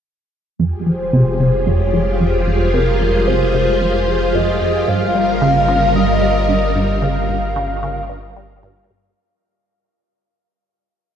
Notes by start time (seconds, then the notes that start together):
0.59 F1 F2 F4 G4 G#4 F5
0.86 F3 C5
1.13 C3
1.40 C3
1.67 F2 C#5
1.93 F3
2.20 F2 C5
2.47 F2
2.74 C3 A#4
3.01 F2
3.27 C3 C5
3.54 C3
3.81 F2
4.08 F3
4.34 F2 D#5
4.61 F2
4.88 G1 G2 G3 A#4 F5
5.15 G3
5.42 C#3
5.68 C#3
5.95 G2 D#5
6.22 G3
6.49 G2
6.76 G2
7.02 C#3 F5
7.29 G2
7.56 C#3
7.83 C#3
8.10 G2
8.36 G3
8.63 G2
8.90 G2